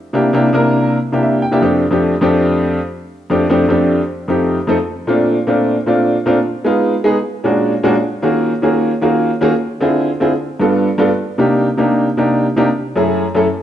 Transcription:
0.13 C3 A#3 D4 E4 G4
0.33 C3 A#3 D4 E4 G4
0.53 C3 A#3 D4 E4 A#4
1.12 C3 A#3 D4 E4 G4
1.23 E5
1.42 G5
1.52 C3 A#3 D4 E4 G4
1.61 F2 A3 C4 D4 G4
1.91 F2 A3 C4 D4 G4
2.21 F2 A3 C4 D4 G4
3.30 F2 A3 C4 D4 G4
3.50 F2 A3 C4 D4 G4
3.69 F2 A3 C4 D4 G4
4.28 F2 A3 C4 D#4 G4
4.67 F2 A3 C4 D#4 A4
5.07 A#2 A3 C4 D4 F4
5.47 A#2 A3 C4 D4 F4
5.86 A#2 A3 C4 D4 F4
6.26 A#2 A3 C4 D4 F4
6.65 G#3 B3 D#4 F4
7.04 G#3 B3 D#4 G#4
7.44 A#2 G#3 C#4 D4 F#4
7.83 A#2 G#3 C#4 D4 F#4
8.22 D#3 A#3 C#4 F4 F#4 G#4
8.62 D#3 A#3 C#4 F4 F#4 G#4
9.01 D#3 A#3 C#4 F4 F#4 G#4
9.41 D#3 A#3 C#4 F4 F#4 G#4
9.80 D3 C4 E4 F4 G#4
10.20 D3 C4 E4 F4 G#4
10.60 G2 B3 D4 F4 A4
10.98 G2 B3 D4 F4 A4
11.38 C3 A#3 D4 D#4 G4
11.77 C3 A#3 D4 D#4 G4
12.17 C3 A#3 D4 D#4 G4
12.56 C3 A#3 D4 D#4 G4
12.96 F#2 A3 C#4 E4 G#4
13.35 F#2 A3 C#4 E4 A4

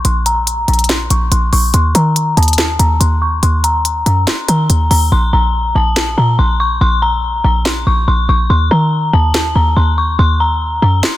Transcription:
0.05 A#1 C6, closed hi-hat
0.26 A#5, closed hi-hat
0.47 closed hi-hat
0.68 A#1 A#5, closed hi-hat
0.73 closed hi-hat
0.79 closed hi-hat
0.84 closed hi-hat
0.89 snare, clap, closed hi-hat
1.10 A#1 C#6, closed hi-hat
1.31 A#1 C6, closed hi-hat
1.53 A#1 C#6, open hi-hat
1.74 D#2 C6, closed hi-hat
1.95 D#3 A#5, closed hi-hat
2.16 closed hi-hat
2.37 D#2 A5, closed hi-hat
2.43 closed hi-hat
2.48 closed hi-hat
2.53 closed hi-hat
2.58 A5, snare, clap, closed hi-hat
2.79 D#2 A#5, closed hi-hat
3.00 D#2 C6, closed hi-hat
3.22 C#6
3.43 D#2 C6, closed hi-hat
3.64 A#5, closed hi-hat
3.85 closed hi-hat
4.06 F#2 A#5, closed hi-hat
4.27 snare, clap, closed hi-hat
4.48 D#3 A#5, closed hi-hat
4.70 D#2, closed hi-hat
4.91 D#2 A#5, open hi-hat
5.12 A#1 C6
5.33 A#1 A#5
5.75 A#1 A5
5.96 snare, clap
6.18 A#2 A#5
6.39 A#1 C6
6.60 C#6
6.81 A#1 C6
7.02 A#5
7.44 A#1 A#5
7.65 C6, snare, clap
7.87 A#1 C#6
8.08 A#1 C6
8.29 A#1 C#6
8.50 D#2 C6
8.71 D#3 A#5
9.13 D#2 A5
9.34 snare, clap
9.55 D#2 A#5
9.76 D#2 C6
9.98 C#6
10.19 D#2 C6
10.40 A#5
10.82 F#2 A#5
11.03 C6, snare, clap

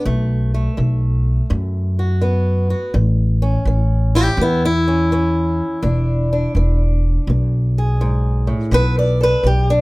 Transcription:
0.05 B1 B2 A3
0.54 A3
0.77 B1 D#3
1.50 F#2
1.99 F#4
2.21 D#3 B3
2.70 F#4
2.94 A1 A2
3.42 C#4
3.65 A1 E3
4.15 E4 G4
4.37 E2
4.41 B3 E4
4.65 E4
4.88 C#4
5.12 E3 C#4
5.82 E1 E2 D4
6.33 D4
6.55 E1 E3
7.27 B1 B2
7.78 G#4
8.01 G#2
8.47 A2
8.71 B1 B2 B3 A4 B4
8.99 D5
9.21 A4 B4
9.43 B1 B3 G4
9.70 D4

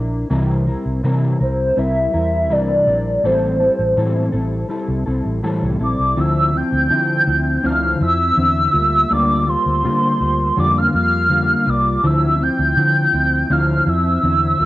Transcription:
Already playing: A#1 D4 E4 A#4
0.30 C2 C3 E3 G3 C4 E4 A#4
0.67 G3 C4 E4 A#4
0.86 C2
1.03 C3 E3 G3 C4 E4 A#4
1.40 C2 G3 C4 E4 A#4 C5
1.76 C2 G3 C4 E4 A#4 E5
2.14 E2 G3 C4 E4 A#4 E5
2.50 C2 C3 E3 G3 C4 E4 A#4 D5
2.87 A#1 G3 C4 E4 A#4
3.24 A1 A2 E3 G3 C4 E4 A4 C5
3.59 G3 C4 E4 A4
3.79 A1
3.96 A2 E3 G3 C4 E4 A4
4.32 A1 G3 C4 E4 A4
4.69 G3 C4 E4 A4
4.88 C2
5.06 C2 G3 C4 E4 A4
5.25 A1
5.43 A2 E3 G3 C4 E4 A4
5.62 C2
5.79 A#1 G3 C4 E4 A4 D6
5.99 C2
6.16 D2 D3 F3 C4 E4 E6
6.53 F3 C4 E4
6.57 G6
6.73 D2
6.89 D3 F3 C4 E4
7.26 D2 F3 C4 E4
7.63 D2 D3 F3 C4 E4 F6
8.00 F2 F3 C4 E4 E6
8.36 E2 D3 C4 E4
8.73 D2 G3 A#3 F4
9.10 D2 D3 G3 A#3 F4 D6
9.46 G3 A#3 F4 C6
9.66 D2
9.83 D3 G3 A#3 F4
10.20 D2 G3 A#3 F4
10.56 F2 D3 G3 A#3 F4 D6
10.78 F6
10.92 F2 G3 A#3 F4 F6
11.29 D3 G3 A#3 F4
11.66 C2 G3 A#3 F4 D6
12.03 D2 D3 F3 C4 E4 E6
12.39 F3 C4 E4 G6
12.59 D2
12.76 D3 F3 C4 E4
13.13 D2 F3 C4 E4
13.49 D2 D3 F3 C4 E4 F6
13.86 F2 F3 C4 E4 E6
14.22 E2 D3 C4 E4
14.60 D2 G3 A#3 F4

